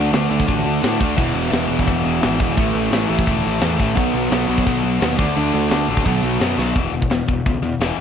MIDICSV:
0, 0, Header, 1, 5, 480
1, 0, Start_track
1, 0, Tempo, 348432
1, 1623, Time_signature, 4, 2, 24, 8
1, 11028, End_track
2, 0, Start_track
2, 0, Title_t, "Distorted electric guitar"
2, 0, Program_c, 0, 30
2, 0, Note_on_c, 0, 50, 90
2, 0, Note_on_c, 0, 57, 106
2, 0, Note_on_c, 0, 62, 106
2, 1357, Note_off_c, 0, 50, 0
2, 1367, Note_off_c, 0, 57, 0
2, 1379, Note_off_c, 0, 62, 0
2, 11028, End_track
3, 0, Start_track
3, 0, Title_t, "Distorted electric guitar"
3, 0, Program_c, 1, 30
3, 0, Note_on_c, 1, 50, 95
3, 0, Note_on_c, 1, 57, 98
3, 0, Note_on_c, 1, 62, 95
3, 149, Note_off_c, 1, 50, 0
3, 153, Note_off_c, 1, 57, 0
3, 160, Note_off_c, 1, 62, 0
3, 165, Note_on_c, 1, 50, 78
3, 170, Note_on_c, 1, 57, 86
3, 177, Note_on_c, 1, 62, 83
3, 387, Note_off_c, 1, 50, 0
3, 390, Note_off_c, 1, 57, 0
3, 402, Note_off_c, 1, 62, 0
3, 403, Note_on_c, 1, 50, 90
3, 407, Note_on_c, 1, 57, 94
3, 418, Note_on_c, 1, 62, 97
3, 616, Note_off_c, 1, 50, 0
3, 626, Note_off_c, 1, 57, 0
3, 632, Note_off_c, 1, 62, 0
3, 633, Note_on_c, 1, 50, 100
3, 643, Note_on_c, 1, 57, 112
3, 649, Note_on_c, 1, 62, 113
3, 1101, Note_off_c, 1, 50, 0
3, 1111, Note_off_c, 1, 57, 0
3, 1118, Note_on_c, 1, 50, 84
3, 1120, Note_off_c, 1, 62, 0
3, 1128, Note_on_c, 1, 57, 93
3, 1136, Note_on_c, 1, 62, 90
3, 1349, Note_off_c, 1, 50, 0
3, 1359, Note_off_c, 1, 57, 0
3, 1361, Note_off_c, 1, 62, 0
3, 1366, Note_on_c, 1, 50, 87
3, 1376, Note_on_c, 1, 57, 87
3, 1378, Note_on_c, 1, 62, 99
3, 1600, Note_off_c, 1, 50, 0
3, 1605, Note_off_c, 1, 57, 0
3, 1605, Note_on_c, 1, 40, 88
3, 1606, Note_off_c, 1, 62, 0
3, 1616, Note_on_c, 1, 47, 90
3, 1618, Note_on_c, 1, 52, 99
3, 2066, Note_off_c, 1, 40, 0
3, 2067, Note_off_c, 1, 47, 0
3, 2083, Note_on_c, 1, 40, 87
3, 2084, Note_on_c, 1, 47, 79
3, 2092, Note_off_c, 1, 52, 0
3, 2098, Note_on_c, 1, 52, 85
3, 2300, Note_off_c, 1, 40, 0
3, 2306, Note_off_c, 1, 47, 0
3, 2316, Note_on_c, 1, 40, 88
3, 2322, Note_on_c, 1, 47, 89
3, 2324, Note_off_c, 1, 52, 0
3, 2330, Note_on_c, 1, 52, 96
3, 2545, Note_off_c, 1, 40, 0
3, 2550, Note_off_c, 1, 47, 0
3, 2557, Note_off_c, 1, 52, 0
3, 2562, Note_on_c, 1, 40, 106
3, 2567, Note_on_c, 1, 47, 103
3, 2574, Note_on_c, 1, 52, 107
3, 3037, Note_off_c, 1, 40, 0
3, 3046, Note_off_c, 1, 47, 0
3, 3051, Note_off_c, 1, 52, 0
3, 3053, Note_on_c, 1, 40, 76
3, 3063, Note_on_c, 1, 47, 82
3, 3068, Note_on_c, 1, 52, 93
3, 3282, Note_off_c, 1, 40, 0
3, 3289, Note_off_c, 1, 47, 0
3, 3298, Note_on_c, 1, 40, 79
3, 3299, Note_off_c, 1, 52, 0
3, 3306, Note_on_c, 1, 47, 90
3, 3316, Note_on_c, 1, 52, 93
3, 3525, Note_off_c, 1, 52, 0
3, 3526, Note_off_c, 1, 40, 0
3, 3529, Note_off_c, 1, 47, 0
3, 3534, Note_on_c, 1, 45, 99
3, 3541, Note_on_c, 1, 52, 97
3, 3550, Note_on_c, 1, 57, 104
3, 4000, Note_off_c, 1, 45, 0
3, 4006, Note_off_c, 1, 52, 0
3, 4016, Note_off_c, 1, 57, 0
3, 4016, Note_on_c, 1, 45, 88
3, 4022, Note_on_c, 1, 52, 93
3, 4033, Note_on_c, 1, 57, 93
3, 4244, Note_off_c, 1, 45, 0
3, 4251, Note_off_c, 1, 57, 0
3, 4253, Note_off_c, 1, 52, 0
3, 4261, Note_on_c, 1, 45, 82
3, 4267, Note_on_c, 1, 57, 99
3, 4269, Note_on_c, 1, 52, 92
3, 4477, Note_off_c, 1, 45, 0
3, 4481, Note_off_c, 1, 52, 0
3, 4487, Note_off_c, 1, 57, 0
3, 4493, Note_on_c, 1, 45, 106
3, 4498, Note_on_c, 1, 52, 98
3, 4504, Note_on_c, 1, 57, 119
3, 4961, Note_off_c, 1, 45, 0
3, 4970, Note_off_c, 1, 52, 0
3, 4974, Note_off_c, 1, 57, 0
3, 4978, Note_on_c, 1, 45, 81
3, 4987, Note_on_c, 1, 52, 94
3, 4990, Note_on_c, 1, 57, 90
3, 5206, Note_off_c, 1, 45, 0
3, 5209, Note_off_c, 1, 52, 0
3, 5222, Note_off_c, 1, 57, 0
3, 5222, Note_on_c, 1, 45, 82
3, 5225, Note_on_c, 1, 52, 88
3, 5239, Note_on_c, 1, 57, 95
3, 5445, Note_off_c, 1, 45, 0
3, 5448, Note_off_c, 1, 52, 0
3, 5450, Note_on_c, 1, 47, 93
3, 5455, Note_off_c, 1, 57, 0
3, 5460, Note_on_c, 1, 54, 96
3, 5465, Note_on_c, 1, 59, 108
3, 5916, Note_off_c, 1, 47, 0
3, 5932, Note_off_c, 1, 59, 0
3, 5932, Note_on_c, 1, 47, 86
3, 5937, Note_off_c, 1, 54, 0
3, 5943, Note_on_c, 1, 54, 89
3, 5949, Note_on_c, 1, 59, 94
3, 6168, Note_off_c, 1, 47, 0
3, 6184, Note_on_c, 1, 47, 96
3, 6185, Note_off_c, 1, 59, 0
3, 6193, Note_off_c, 1, 54, 0
3, 6198, Note_on_c, 1, 54, 96
3, 6201, Note_on_c, 1, 59, 94
3, 6403, Note_off_c, 1, 47, 0
3, 6412, Note_off_c, 1, 54, 0
3, 6415, Note_off_c, 1, 59, 0
3, 6419, Note_on_c, 1, 47, 93
3, 6429, Note_on_c, 1, 54, 110
3, 6432, Note_on_c, 1, 59, 102
3, 6876, Note_off_c, 1, 47, 0
3, 6883, Note_off_c, 1, 54, 0
3, 6890, Note_off_c, 1, 59, 0
3, 6892, Note_on_c, 1, 47, 90
3, 6899, Note_on_c, 1, 54, 83
3, 6907, Note_on_c, 1, 59, 95
3, 7120, Note_off_c, 1, 47, 0
3, 7124, Note_off_c, 1, 54, 0
3, 7128, Note_off_c, 1, 59, 0
3, 7128, Note_on_c, 1, 50, 95
3, 7133, Note_on_c, 1, 57, 107
3, 7140, Note_on_c, 1, 62, 106
3, 7360, Note_off_c, 1, 50, 0
3, 7370, Note_off_c, 1, 57, 0
3, 7373, Note_off_c, 1, 62, 0
3, 7377, Note_on_c, 1, 50, 96
3, 7386, Note_on_c, 1, 57, 100
3, 7390, Note_on_c, 1, 62, 110
3, 7830, Note_off_c, 1, 50, 0
3, 7840, Note_off_c, 1, 57, 0
3, 7846, Note_off_c, 1, 62, 0
3, 7846, Note_on_c, 1, 50, 76
3, 7856, Note_on_c, 1, 57, 77
3, 7863, Note_on_c, 1, 62, 96
3, 8082, Note_off_c, 1, 50, 0
3, 8087, Note_off_c, 1, 57, 0
3, 8095, Note_off_c, 1, 62, 0
3, 8099, Note_on_c, 1, 50, 87
3, 8104, Note_on_c, 1, 57, 87
3, 8111, Note_on_c, 1, 62, 92
3, 8324, Note_off_c, 1, 50, 0
3, 8326, Note_off_c, 1, 57, 0
3, 8330, Note_off_c, 1, 62, 0
3, 8332, Note_on_c, 1, 47, 98
3, 8341, Note_on_c, 1, 54, 93
3, 8352, Note_on_c, 1, 59, 116
3, 8800, Note_off_c, 1, 47, 0
3, 8806, Note_off_c, 1, 54, 0
3, 8812, Note_off_c, 1, 59, 0
3, 8817, Note_on_c, 1, 47, 83
3, 8822, Note_on_c, 1, 54, 93
3, 8828, Note_on_c, 1, 59, 92
3, 9037, Note_off_c, 1, 47, 0
3, 9051, Note_off_c, 1, 54, 0
3, 9053, Note_off_c, 1, 59, 0
3, 9053, Note_on_c, 1, 47, 82
3, 9068, Note_on_c, 1, 54, 90
3, 9069, Note_on_c, 1, 59, 86
3, 9281, Note_off_c, 1, 47, 0
3, 9288, Note_on_c, 1, 40, 82
3, 9289, Note_off_c, 1, 54, 0
3, 9289, Note_off_c, 1, 59, 0
3, 9299, Note_on_c, 1, 47, 85
3, 9308, Note_on_c, 1, 52, 92
3, 9519, Note_off_c, 1, 40, 0
3, 9524, Note_off_c, 1, 47, 0
3, 9529, Note_off_c, 1, 52, 0
3, 9545, Note_on_c, 1, 40, 70
3, 9553, Note_on_c, 1, 47, 81
3, 9758, Note_off_c, 1, 40, 0
3, 9762, Note_off_c, 1, 47, 0
3, 9775, Note_on_c, 1, 40, 67
3, 9780, Note_on_c, 1, 47, 84
3, 9993, Note_off_c, 1, 40, 0
3, 9996, Note_off_c, 1, 47, 0
3, 10025, Note_on_c, 1, 40, 71
3, 10026, Note_on_c, 1, 47, 84
3, 10239, Note_off_c, 1, 40, 0
3, 10239, Note_off_c, 1, 47, 0
3, 10276, Note_on_c, 1, 40, 75
3, 10280, Note_on_c, 1, 47, 78
3, 10485, Note_off_c, 1, 40, 0
3, 10487, Note_off_c, 1, 47, 0
3, 10498, Note_on_c, 1, 40, 65
3, 10506, Note_on_c, 1, 47, 84
3, 10716, Note_off_c, 1, 40, 0
3, 10720, Note_off_c, 1, 47, 0
3, 10754, Note_on_c, 1, 40, 89
3, 10758, Note_on_c, 1, 47, 101
3, 10764, Note_on_c, 1, 52, 92
3, 10974, Note_off_c, 1, 40, 0
3, 10976, Note_off_c, 1, 47, 0
3, 10979, Note_off_c, 1, 52, 0
3, 11028, End_track
4, 0, Start_track
4, 0, Title_t, "Picked electric bass"
4, 0, Program_c, 2, 34
4, 0, Note_on_c, 2, 38, 91
4, 138, Note_off_c, 2, 38, 0
4, 179, Note_on_c, 2, 38, 97
4, 373, Note_off_c, 2, 38, 0
4, 413, Note_on_c, 2, 38, 80
4, 610, Note_off_c, 2, 38, 0
4, 670, Note_on_c, 2, 33, 92
4, 860, Note_off_c, 2, 33, 0
4, 887, Note_on_c, 2, 38, 85
4, 1087, Note_off_c, 2, 38, 0
4, 1151, Note_on_c, 2, 45, 86
4, 1341, Note_off_c, 2, 45, 0
4, 1385, Note_on_c, 2, 38, 84
4, 1578, Note_off_c, 2, 38, 0
4, 1621, Note_on_c, 2, 28, 101
4, 1815, Note_off_c, 2, 28, 0
4, 1845, Note_on_c, 2, 28, 92
4, 2046, Note_off_c, 2, 28, 0
4, 2093, Note_on_c, 2, 28, 89
4, 2290, Note_off_c, 2, 28, 0
4, 2331, Note_on_c, 2, 28, 84
4, 2530, Note_off_c, 2, 28, 0
4, 2585, Note_on_c, 2, 28, 93
4, 2778, Note_off_c, 2, 28, 0
4, 2817, Note_on_c, 2, 28, 86
4, 3013, Note_off_c, 2, 28, 0
4, 3076, Note_on_c, 2, 32, 95
4, 3264, Note_off_c, 2, 32, 0
4, 3307, Note_on_c, 2, 28, 94
4, 3499, Note_off_c, 2, 28, 0
4, 3552, Note_on_c, 2, 33, 107
4, 3741, Note_off_c, 2, 33, 0
4, 3776, Note_on_c, 2, 33, 91
4, 3972, Note_off_c, 2, 33, 0
4, 4014, Note_on_c, 2, 33, 91
4, 4210, Note_off_c, 2, 33, 0
4, 4254, Note_on_c, 2, 33, 88
4, 4451, Note_off_c, 2, 33, 0
4, 4509, Note_on_c, 2, 28, 99
4, 4699, Note_off_c, 2, 28, 0
4, 4758, Note_on_c, 2, 33, 92
4, 4945, Note_off_c, 2, 33, 0
4, 4984, Note_on_c, 2, 40, 96
4, 5176, Note_off_c, 2, 40, 0
4, 5230, Note_on_c, 2, 33, 92
4, 5420, Note_off_c, 2, 33, 0
4, 5467, Note_on_c, 2, 35, 105
4, 5658, Note_off_c, 2, 35, 0
4, 5705, Note_on_c, 2, 35, 89
4, 5896, Note_off_c, 2, 35, 0
4, 5935, Note_on_c, 2, 35, 93
4, 6130, Note_off_c, 2, 35, 0
4, 6173, Note_on_c, 2, 35, 86
4, 6369, Note_off_c, 2, 35, 0
4, 6429, Note_on_c, 2, 35, 95
4, 6618, Note_off_c, 2, 35, 0
4, 6663, Note_on_c, 2, 35, 85
4, 6855, Note_off_c, 2, 35, 0
4, 6907, Note_on_c, 2, 39, 93
4, 7097, Note_off_c, 2, 39, 0
4, 7151, Note_on_c, 2, 38, 88
4, 7339, Note_off_c, 2, 38, 0
4, 7397, Note_on_c, 2, 38, 101
4, 7583, Note_off_c, 2, 38, 0
4, 7635, Note_on_c, 2, 38, 97
4, 7821, Note_off_c, 2, 38, 0
4, 7864, Note_on_c, 2, 38, 92
4, 8055, Note_off_c, 2, 38, 0
4, 8110, Note_on_c, 2, 33, 88
4, 8299, Note_off_c, 2, 33, 0
4, 8345, Note_on_c, 2, 35, 97
4, 8535, Note_off_c, 2, 35, 0
4, 8579, Note_on_c, 2, 35, 88
4, 8772, Note_off_c, 2, 35, 0
4, 8820, Note_on_c, 2, 42, 93
4, 9013, Note_off_c, 2, 42, 0
4, 9061, Note_on_c, 2, 35, 92
4, 9254, Note_off_c, 2, 35, 0
4, 9303, Note_on_c, 2, 28, 89
4, 9456, Note_off_c, 2, 28, 0
4, 9538, Note_on_c, 2, 28, 90
4, 9693, Note_off_c, 2, 28, 0
4, 9781, Note_on_c, 2, 28, 86
4, 9934, Note_off_c, 2, 28, 0
4, 10044, Note_on_c, 2, 28, 86
4, 10190, Note_off_c, 2, 28, 0
4, 10276, Note_on_c, 2, 37, 91
4, 10425, Note_off_c, 2, 37, 0
4, 10498, Note_on_c, 2, 40, 90
4, 10654, Note_off_c, 2, 40, 0
4, 10736, Note_on_c, 2, 28, 91
4, 10892, Note_off_c, 2, 28, 0
4, 11028, End_track
5, 0, Start_track
5, 0, Title_t, "Drums"
5, 183, Note_on_c, 9, 46, 64
5, 190, Note_on_c, 9, 38, 122
5, 321, Note_off_c, 9, 46, 0
5, 328, Note_off_c, 9, 38, 0
5, 547, Note_on_c, 9, 36, 81
5, 665, Note_on_c, 9, 46, 58
5, 667, Note_off_c, 9, 36, 0
5, 667, Note_on_c, 9, 36, 97
5, 802, Note_off_c, 9, 46, 0
5, 805, Note_off_c, 9, 36, 0
5, 1151, Note_on_c, 9, 46, 59
5, 1158, Note_on_c, 9, 38, 121
5, 1288, Note_off_c, 9, 46, 0
5, 1295, Note_off_c, 9, 38, 0
5, 1386, Note_on_c, 9, 36, 96
5, 1524, Note_off_c, 9, 36, 0
5, 1618, Note_on_c, 9, 49, 105
5, 1624, Note_on_c, 9, 36, 120
5, 1756, Note_off_c, 9, 49, 0
5, 1761, Note_off_c, 9, 36, 0
5, 2107, Note_on_c, 9, 46, 59
5, 2114, Note_on_c, 9, 38, 118
5, 2245, Note_off_c, 9, 46, 0
5, 2252, Note_off_c, 9, 38, 0
5, 2467, Note_on_c, 9, 36, 82
5, 2576, Note_on_c, 9, 46, 61
5, 2584, Note_off_c, 9, 36, 0
5, 2584, Note_on_c, 9, 36, 101
5, 2714, Note_off_c, 9, 46, 0
5, 2722, Note_off_c, 9, 36, 0
5, 3068, Note_on_c, 9, 46, 69
5, 3075, Note_on_c, 9, 38, 114
5, 3205, Note_off_c, 9, 46, 0
5, 3212, Note_off_c, 9, 38, 0
5, 3308, Note_on_c, 9, 36, 92
5, 3445, Note_off_c, 9, 36, 0
5, 3546, Note_on_c, 9, 46, 72
5, 3548, Note_on_c, 9, 36, 127
5, 3684, Note_off_c, 9, 46, 0
5, 3686, Note_off_c, 9, 36, 0
5, 4032, Note_on_c, 9, 46, 63
5, 4039, Note_on_c, 9, 38, 120
5, 4170, Note_off_c, 9, 46, 0
5, 4177, Note_off_c, 9, 38, 0
5, 4391, Note_on_c, 9, 36, 80
5, 4509, Note_off_c, 9, 36, 0
5, 4509, Note_on_c, 9, 36, 100
5, 4510, Note_on_c, 9, 46, 59
5, 4647, Note_off_c, 9, 36, 0
5, 4647, Note_off_c, 9, 46, 0
5, 4977, Note_on_c, 9, 46, 61
5, 4983, Note_on_c, 9, 38, 118
5, 5114, Note_off_c, 9, 46, 0
5, 5121, Note_off_c, 9, 38, 0
5, 5230, Note_on_c, 9, 36, 94
5, 5368, Note_off_c, 9, 36, 0
5, 5472, Note_on_c, 9, 36, 113
5, 5477, Note_on_c, 9, 46, 64
5, 5610, Note_off_c, 9, 36, 0
5, 5615, Note_off_c, 9, 46, 0
5, 5948, Note_on_c, 9, 46, 62
5, 5954, Note_on_c, 9, 38, 116
5, 6085, Note_off_c, 9, 46, 0
5, 6092, Note_off_c, 9, 38, 0
5, 6310, Note_on_c, 9, 36, 84
5, 6430, Note_off_c, 9, 36, 0
5, 6430, Note_on_c, 9, 36, 98
5, 6432, Note_on_c, 9, 46, 60
5, 6568, Note_off_c, 9, 36, 0
5, 6570, Note_off_c, 9, 46, 0
5, 6914, Note_on_c, 9, 46, 66
5, 6921, Note_on_c, 9, 38, 121
5, 7052, Note_off_c, 9, 46, 0
5, 7058, Note_off_c, 9, 38, 0
5, 7144, Note_on_c, 9, 49, 103
5, 7147, Note_on_c, 9, 36, 109
5, 7281, Note_off_c, 9, 49, 0
5, 7285, Note_off_c, 9, 36, 0
5, 7865, Note_on_c, 9, 46, 70
5, 7872, Note_on_c, 9, 38, 123
5, 8002, Note_off_c, 9, 46, 0
5, 8009, Note_off_c, 9, 38, 0
5, 8226, Note_on_c, 9, 36, 78
5, 8345, Note_off_c, 9, 36, 0
5, 8345, Note_on_c, 9, 36, 97
5, 8347, Note_on_c, 9, 46, 65
5, 8483, Note_off_c, 9, 36, 0
5, 8484, Note_off_c, 9, 46, 0
5, 8829, Note_on_c, 9, 46, 63
5, 8836, Note_on_c, 9, 38, 118
5, 8967, Note_off_c, 9, 46, 0
5, 8974, Note_off_c, 9, 38, 0
5, 9078, Note_on_c, 9, 38, 68
5, 9216, Note_off_c, 9, 38, 0
5, 9302, Note_on_c, 9, 46, 80
5, 9309, Note_on_c, 9, 36, 118
5, 9439, Note_off_c, 9, 46, 0
5, 9447, Note_off_c, 9, 36, 0
5, 9564, Note_on_c, 9, 46, 54
5, 9673, Note_on_c, 9, 36, 90
5, 9702, Note_off_c, 9, 46, 0
5, 9789, Note_on_c, 9, 46, 73
5, 9796, Note_on_c, 9, 38, 109
5, 9811, Note_off_c, 9, 36, 0
5, 9926, Note_off_c, 9, 46, 0
5, 9933, Note_off_c, 9, 38, 0
5, 10034, Note_on_c, 9, 46, 57
5, 10035, Note_on_c, 9, 36, 86
5, 10172, Note_off_c, 9, 46, 0
5, 10173, Note_off_c, 9, 36, 0
5, 10273, Note_on_c, 9, 46, 74
5, 10278, Note_on_c, 9, 36, 111
5, 10411, Note_off_c, 9, 46, 0
5, 10416, Note_off_c, 9, 36, 0
5, 10519, Note_on_c, 9, 46, 58
5, 10657, Note_off_c, 9, 46, 0
5, 10760, Note_on_c, 9, 46, 84
5, 10767, Note_on_c, 9, 38, 119
5, 10898, Note_off_c, 9, 46, 0
5, 10904, Note_off_c, 9, 38, 0
5, 11028, End_track
0, 0, End_of_file